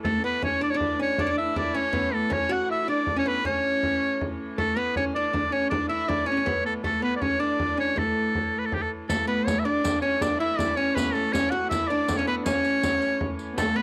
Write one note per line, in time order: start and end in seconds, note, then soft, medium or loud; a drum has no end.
0.04 4.59 A2 medium
0.04 4.58 E3 medium
0.04 0.20 A3 medium
0.04 0.23 A3 medium
0.04 0.22 A4 medium
0.04 frame drum medium
0.18 0.24 C#4 soft
0.22 0.41 B3 medium
0.22 0.43 B3 medium
0.22 0.42 B4 medium
0.42 0.63 C#4 medium
0.42 0.60 C#4 medium
0.42 0.61 C#5 medium
0.42 frame drum medium
0.61 0.73 D4 medium
0.61 0.74 D4 medium
0.61 0.72 D5 medium
0.70 0.78 C#5 medium
0.74 1.15 D4 medium
0.74 0.99 D4 medium
0.74 1.01 D5 medium
0.80 frame drum medium
1.00 1.19 C#4 medium
1.00 1.22 C#5 medium
1.18 1.27 D4 medium
1.18 1.25 D4 medium
1.18 1.25 D5 medium
1.18 frame drum medium
1.23 1.55 D4 medium
1.23 1.30 C#5 medium
1.28 1.39 D4 medium
1.28 1.37 D5 loud
1.38 1.78 E4 medium
1.38 1.55 E5 medium
1.56 1.74 D4 medium
1.56 1.78 D5 medium
1.56 frame drum medium
1.75 1.94 C#4 medium
1.75 2.14 C#4 medium
1.75 2.15 C#5 medium
1.93 2.32 B3 medium
1.93 frame drum medium
2.13 2.32 A3 medium
2.13 2.34 A4 medium
2.30 2.50 C#4 medium
2.30 2.52 C#4 medium
2.30 2.54 C#5 medium
2.30 frame drum medium
2.49 2.89 F#4 medium
2.49 2.71 F#4 medium
2.49 2.70 F#5 medium
2.69 2.81 E4 medium
2.69 2.88 E5 medium
2.82 2.90 E4 medium
2.88 3.16 D4 medium
2.88 3.15 D5 medium
3.07 frame drum medium
3.16 3.43 C#4 medium
3.16 3.26 C#4 medium
3.16 3.29 C#5 medium
3.26 3.43 B3 medium
3.26 3.45 B4 medium
3.45 4.35 C#4 medium
3.45 4.36 C#5 loud
3.45 frame drum medium
3.83 frame drum medium
4.21 frame drum medium
4.40 frame drum soft
4.58 9.09 A2 medium
4.58 9.09 E3 medium
4.58 4.76 A3 medium
4.58 4.78 A3 medium
4.58 4.79 A4 medium
4.58 frame drum medium
4.77 4.94 B3 medium
4.77 4.99 B3 medium
4.77 4.96 B4 medium
4.96 5.16 C#4 medium
4.96 5.15 C#4 medium
4.96 5.05 C#5 medium
4.96 frame drum medium
5.15 5.33 D4 medium
5.15 5.32 D4 medium
5.15 5.54 D5 medium
5.33 5.52 D4 medium
5.33 5.54 D4 medium
5.33 frame drum medium
5.52 5.71 C#4 medium
5.52 5.73 C#4 medium
5.52 5.69 C#5 medium
5.70 5.89 D4 medium
5.70 5.90 D4 medium
5.70 5.88 D5 medium
5.70 frame drum medium
5.89 6.08 E4 medium
5.89 6.25 E4 medium
5.89 6.10 E5 medium
6.08 6.26 D4 medium
6.08 6.28 D5 medium
6.08 frame drum medium
6.26 6.30 C#4 medium
6.26 6.46 C#4 medium
6.26 6.65 C#5 medium
6.32 6.36 C#4 medium
6.37 6.46 C#4 medium
6.46 6.84 B3 medium
6.46 6.66 B3 medium
6.46 frame drum medium
6.64 6.83 A3 medium
6.64 6.74 A4 medium
6.84 7.01 A3 medium
6.84 7.02 A3 medium
6.84 7.01 A4 medium
6.84 frame drum medium
7.02 7.22 B3 medium
7.02 7.20 B3 medium
7.02 7.16 B4 medium
7.16 7.23 D5 medium
7.21 7.39 C#4 medium
7.21 7.41 C#5 medium
7.21 frame drum medium
7.40 7.77 D4 medium
7.40 7.98 D4 medium
7.40 7.78 D5 medium
7.60 frame drum medium
7.77 7.97 C#4 medium
7.77 8.00 C#5 medium
7.96 8.53 A3 medium
7.96 8.58 A3 medium
7.96 8.60 A4 medium
7.96 frame drum medium
8.35 frame drum medium
8.58 8.67 B4 medium
8.65 8.76 A4 medium
8.72 8.84 G4 medium
8.72 frame drum medium
8.82 8.90 A4 medium
9.09 13.58 A2 medium
9.09 13.58 E3 medium
9.09 9.67 A3 medium
9.09 9.27 A3 medium
9.09 9.27 A4 medium
9.09 riq medium
9.09 frame drum medium
9.27 9.66 B3 medium
9.27 9.48 B4 medium
9.46 9.61 C#5 medium
9.46 riq medium
9.46 frame drum medium
9.59 9.67 E5 medium
9.65 9.83 D4 medium
9.65 10.02 D4 medium
9.65 10.01 D5 loud
9.84 10.02 D4 medium
9.84 riq medium
9.84 frame drum medium
10.02 10.20 C#4 medium
10.02 10.23 C#5 medium
10.21 10.39 D4 medium
10.21 10.40 D4 medium
10.21 10.40 D5 loud
10.21 riq medium
10.21 frame drum medium
10.39 10.74 E4 medium
10.39 10.58 E4 medium
10.39 10.60 E5 medium
10.58 10.77 D4 medium
10.58 10.78 D5 loud
10.58 riq medium
10.58 frame drum medium
10.76 10.97 C#4 medium
10.76 11.30 C#4 medium
10.76 10.96 C#5 loud
10.95 11.15 B3 medium
10.95 11.15 B4 medium
10.95 riq medium
10.95 frame drum medium
11.13 11.34 A3 medium
11.13 11.34 A4 medium
11.32 11.53 C#4 medium
11.32 11.54 C#4 medium
11.32 11.52 C#5 loud
11.32 riq medium
11.32 frame drum medium
11.51 11.71 F#4 medium
11.51 11.70 F#4 medium
11.51 11.69 F#5 loud
11.69 11.92 E4 medium
11.69 11.90 E4 medium
11.69 11.89 E5 loud
11.69 riq medium
11.69 frame drum medium
11.88 12.17 D4 medium
11.88 12.18 D4 medium
11.88 12.18 D5 loud
12.08 riq medium
12.08 frame drum medium
12.17 12.29 C#4 medium
12.17 12.28 C#4 medium
12.17 12.27 C#5 medium
12.27 12.46 B3 medium
12.27 12.39 B3 medium
12.27 12.36 B4 medium
12.39 12.48 D4 medium
12.45 13.35 C#4 medium
12.45 13.39 C#4 loud
12.45 13.35 C#5 loud
12.45 riq medium
12.45 frame drum medium
12.64 riq soft
12.64 frame drum soft
12.83 riq medium
12.83 frame drum medium
13.02 riq soft
13.02 frame drum soft
13.21 frame drum medium
13.39 riq soft
13.52 13.60 B3 medium
13.58 13.82 A2 medium
13.58 13.82 E3 medium
13.58 13.75 A3 medium
13.58 13.82 A3 medium
13.58 13.78 A4 medium
13.58 riq medium
13.58 frame drum medium
13.76 13.82 B3 medium
13.76 13.82 B4 medium